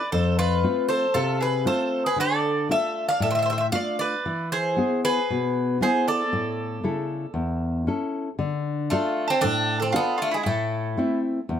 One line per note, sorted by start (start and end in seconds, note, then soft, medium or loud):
0.12 0.62 F2 medium
0.12 0.36 A4 medium
0.12 0.36 C5 medium
0.39 0.86 F4 medium
0.39 0.88 B4 medium
0.63 1.05 A3 soft
0.63 1.05 C4 soft
0.63 1.05 F4 soft
0.89 1.13 A4 medium
0.89 1.15 C5 medium
1.14 1.65 C3 medium
1.14 1.38 F4 medium
1.14 1.41 A4 medium
1.41 1.65 G#4 medium
1.41 1.66 B4 medium
1.65 2.07 A3 soft
1.65 2.07 C4 soft
1.65 2.07 F4 medium
1.65 2.03 A4 medium
1.65 2.03 C5 medium
2.06 2.18 G#4 medium
2.06 2.19 B4 medium
2.16 2.67 D3 medium
2.16 2.67 A4 medium
2.21 2.71 D5 medium
2.69 3.11 A3 medium
2.69 3.11 D4 soft
2.69 3.12 F4 medium
2.69 3.07 A4 medium
2.69 3.07 E5 medium
3.09 3.22 D5 medium
3.09 3.21 F5 medium
3.20 3.71 A2 medium
3.20 3.29 A4 medium
3.20 3.29 E5 medium
3.31 3.37 C5 medium
3.31 3.34 E5 medium
3.35 3.44 C5 medium
3.35 3.41 E5 medium
3.42 3.51 C5 medium
3.42 3.49 E5 medium
3.50 3.59 C5 medium
3.50 3.57 E5 medium
3.58 3.67 C5 medium
3.58 3.65 E5 medium
3.72 4.14 A3 soft
3.72 4.14 D4 soft
3.72 4.15 F4 medium
3.72 3.98 D5 medium
3.72 3.97 F5 loud
3.99 4.48 B4 medium
3.99 4.47 D5 medium
4.26 4.76 E3 medium
4.52 5.00 G#4 medium
4.52 5.00 C5 medium
4.77 5.18 B3 soft
4.77 5.18 E4 soft
4.77 5.19 G#4 medium
5.05 5.77 G#4 medium
5.05 5.77 B4 medium
5.30 5.80 B2 medium
5.81 6.22 B3 medium
5.81 6.23 E4 soft
5.81 6.23 G#4 soft
5.81 6.06 G#4 medium
5.81 6.06 C5 medium
6.08 8.10 A4 medium
6.08 8.10 D5 medium
6.33 6.83 A2 medium
6.84 7.25 C#3 soft
6.84 7.25 E4 soft
6.84 7.26 A4 medium
7.34 7.85 E2 medium
7.87 8.29 C#4 soft
7.87 8.28 E4 soft
7.87 8.29 A4 medium
8.39 8.89 D3 medium
8.90 9.26 A3 medium
8.90 9.32 D4 soft
8.90 9.27 F4 medium
8.90 9.33 F4 soft
8.90 9.33 A4 medium
9.28 9.43 C4 loud
9.28 9.40 A4 medium
9.41 9.93 A2 medium
9.41 9.78 D4 loud
9.41 9.77 A4 medium
9.80 9.94 C4 medium
9.80 9.92 A4 medium
9.92 10.19 B3 loud
9.92 10.35 D4 soft
9.92 10.17 F4 medium
9.92 10.35 F4 soft
9.92 10.35 A4 medium
10.18 10.31 F4 medium
10.22 10.33 A3 medium
10.31 10.45 G#3 medium
10.31 10.42 E4 medium
10.43 10.96 A2 medium
10.43 11.19 A3 medium
10.43 11.18 E4 medium
10.97 11.38 A3 medium
10.97 11.39 C4 soft
10.97 11.39 E4 medium
11.49 11.60 E2 medium